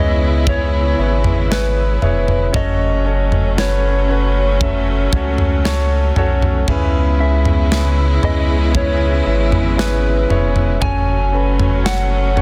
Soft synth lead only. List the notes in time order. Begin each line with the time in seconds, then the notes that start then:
Already playing: D#5
0.49 C#5
1.52 B4
2.56 D#5
3.59 C#5
7.20 E5
8.25 D#5
8.76 C#5
9.80 B4
10.82 G#5
11.86 F#5